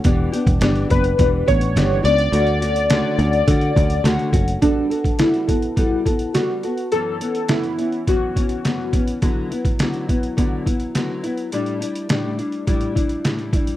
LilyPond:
<<
  \new Staff \with { instrumentName = "Synth keys" } { \time 4/4 \key d \major \tempo 4 = 104 r4. b'4 cis''4 d''8~ | d''2. r4 | d'4 e'2 fis'4 | a'4 e'4 fis'4. r8 |
r1 | r1 | }
  \new Staff \with { instrumentName = "Nylon-string guitar" } { \time 4/4 \key d \major <e b d' g'>8 <b d' g'>8 <e b d' g'>8 <b d' g'>8 <e b d' g'>8 <b d' g'>8 <e b d' g'>8 <b d' g'>8 | <d a cis' fis'>8 <a cis' fis'>8 <d a cis' fis'>8 <a cis' fis'>8 <d a cis' fis'>8 <a cis' fis'>8 <d a cis' fis'>8 <a cis' fis'>8 | <g b fis' a'>8 <b fis' a'>8 <g b fis' a'>8 <b fis' a'>8 <g b fis' a'>8 <b fis' a'>8 <g b fis' a'>8 <b fis' a'>8 | <fis, e b cis'>8 <e b cis'>8 <fis, e b cis'>8 <e b cis'>8 <fis, e b cis'>8 <e b cis'>8 <fis, e b cis'>8 <e b cis'>8 |
<d fis b e'>8 <fis b e'>8 <d fis b e'>8 <fis b e'>8 <d fis b e'>8 <fis b e'>8 <d fis b e'>8 <fis b e'>8 | <a, g d' e'>8 <g d' e'>8 <a, g d' e'>8 <g d' e'>8 <a, g d' e'>8 <g d' e'>8 <a, g d' e'>8 <g d' e'>8 | }
  \new Staff \with { instrumentName = "Picked electric bass" } { \clef bass \time 4/4 \key d \major e,,8 r16 e,,16 g,,8 fis,,8 e,,8 a,,8 g,,8 cis,8 | d,4~ d,16 r16 d,8 d8 d,8 d,16 r16 fis,,8 | r1 | r1 |
r1 | r1 | }
  \new DrumStaff \with { instrumentName = "Drums" } \drummode { \time 4/4 <hh bd>8 hh16 <hh bd>16 <hh sn>16 hh16 <hh bd>16 hh16 <hh bd>8 <hh bd>16 hh16 <hh sn>8 hh16 hh16 | hh16 hh16 hh16 hh16 <hh sn>8 hh16 hh16 <hh bd>16 hh16 <hh bd>16 hh16 <hh sn>16 hh16 <hh bd>16 hh16 | <hh bd>8 hh16 <hh bd>16 <hh sn>16 hh16 <hh bd>16 hh16 <hh bd>8 <hh bd>16 hh16 <hh sn>8 hh16 hh16 | hh8 hh16 hh16 <hh sn>16 hh16 hh16 hh16 <hh bd>8 <hh bd>16 hh16 <hh sn>8 <hh bd>16 hh16 |
<hh bd>8 hh16 <hh bd>16 <hh sn>16 hh16 <hh bd>16 hh16 <hh bd>8 <hh bd>16 hh16 <hh sn>8 hh16 hh16 | hh16 hh16 hh16 hh16 <hh sn>8 hh16 hh16 <hh bd>16 hh16 <hh bd>16 hh16 <hh sn>16 hh16 <hh bd>16 hh16 | }
>>